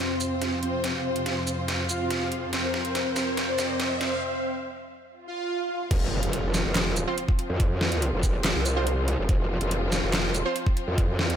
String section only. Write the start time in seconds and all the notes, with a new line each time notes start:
Already playing: F2 C3 C4 F4 C5
2.53 A#4
5.91 F3 C4 F4